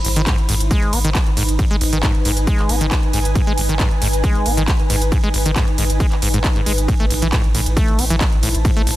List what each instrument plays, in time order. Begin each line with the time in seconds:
Already playing: ambient pad D#4 B5
0.05 acid bass G#1, sub bass G#1, open hi-hat, ride
0.16 sub bass G#1, acid bass D#3, closed hi-hat, ride
0.27 acid bass G#2, kick, clap, closed hi-hat, ride
0.38 sub bass G#1, ride
0.44 ambient pad B4
0.49 sub bass G#1, acid bass G#2, open hi-hat, ride
0.60 sub bass G#1, closed hi-hat, ride
0.71 acid bass G#3, kick, closed hi-hat, ride
0.82 sub bass G#1, ride
0.93 sub bass G#1, acid bass B3, open hi-hat, ride
1.04 sub bass G#1, acid bass D#3, ambient pad G#5, closed hi-hat, ride
1.15 kick, clap, closed hi-hat, ride
1.26 sub bass G#1, ride
1.37 sub bass G#1, acid bass G#2, open hi-hat, ride
1.49 sub bass G#1, closed hi-hat, ride
1.59 acid bass G#2, kick, closed hi-hat, ride
1.71 sub bass G#1, acid bass G#3, ride
1.81 sub bass G#1, acid bass G#1, open hi-hat, ride
1.93 sub bass G#1, acid bass D#3, closed hi-hat, ride
2.03 acid bass G#2, kick, clap, closed hi-hat, ride
2.15 sub bass G#1, ride
2.25 sub bass G#1, acid bass G#2, open hi-hat, ride
2.37 sub bass G#1, closed hi-hat, ride
2.47 acid bass G#3, kick, closed hi-hat, ride
2.59 sub bass G#1, clap, ride
2.69 sub bass G#1, acid bass B3, open hi-hat, ride
2.81 sub bass G#1, acid bass D#3, closed hi-hat, ride
2.91 kick, clap, closed hi-hat, ride
3.03 sub bass G#1, ride
3.13 sub bass G#1, acid bass G#2, open hi-hat, ride
3.25 sub bass G#1, closed hi-hat, ride
3.35 acid bass G#2, kick, closed hi-hat, ride
3.47 sub bass G#1, acid bass G#3, ride
3.58 acid bass G#1, sub bass G#1, open hi-hat, ride
3.69 sub bass G#1, acid bass D#3, closed hi-hat, ride
3.80 acid bass G#2, kick, clap, closed hi-hat, ride
3.91 sub bass G#1, ride
4.02 sub bass G#1, acid bass G#2, open hi-hat, ride
4.13 sub bass G#1, closed hi-hat, ride
4.24 acid bass G#3, kick, closed hi-hat, ride
4.35 sub bass G#1, ride
4.46 sub bass G#1, acid bass B3, open hi-hat, ride
4.57 sub bass G#1, acid bass D#3, closed hi-hat, ride
4.68 kick, clap, closed hi-hat, ride
4.79 sub bass G#1, ride
4.90 sub bass G#1, acid bass G#2, open hi-hat, ride
5.02 sub bass G#1, closed hi-hat, ride
5.12 acid bass G#2, kick, closed hi-hat, ride
5.24 sub bass G#1, acid bass G#3, ride
5.34 acid bass G#1, sub bass G#1, open hi-hat, ride
5.46 sub bass G#1, acid bass D#3, closed hi-hat, ride
5.56 acid bass G#2, kick, clap, closed hi-hat, ride
5.68 sub bass G#1, ride
5.78 sub bass G#1, acid bass G#2, open hi-hat, ride
5.90 sub bass G#1, closed hi-hat, ride
6.00 acid bass G#3, kick, closed hi-hat, ride
6.12 sub bass G#1, clap, ride
6.22 sub bass G#1, acid bass G#2, open hi-hat, ride
6.34 sub bass G#1, acid bass G#2, closed hi-hat, ride
6.44 kick, clap, closed hi-hat, ride
6.56 sub bass G#1, acid bass G#2, ride
6.66 sub bass G#1, acid bass G#3, open hi-hat, ride
6.78 sub bass G#1, closed hi-hat, ride
6.88 acid bass A2, ambient pad E4, kick, closed hi-hat, ride
7.00 sub bass A1, acid bass A3, ride
7.10 acid bass A1, sub bass A1, open hi-hat, ride
7.22 sub bass A1, acid bass E3, closed hi-hat, ride
7.27 ambient pad C5
7.32 acid bass A2, kick, clap, closed hi-hat, ride
7.43 sub bass A1, ambient pad A5, ride
7.54 sub bass A1, acid bass A2, open hi-hat, ride
7.66 sub bass A1, closed hi-hat, ride
7.77 acid bass A3, kick, closed hi-hat, ride
7.88 sub bass A1, ride
7.99 sub bass A1, acid bass C4, open hi-hat, ride
8.10 sub bass A1, acid bass E3, closed hi-hat, ride
8.21 kick, clap, closed hi-hat, ride
8.32 sub bass A1, ride
8.43 sub bass A1, acid bass A2, open hi-hat, ride
8.55 sub bass A1, closed hi-hat, ride
8.65 acid bass A2, kick, closed hi-hat, ride
8.77 sub bass A1, acid bass A3, ride
8.87 sub bass A1, acid bass A1, open hi-hat, ride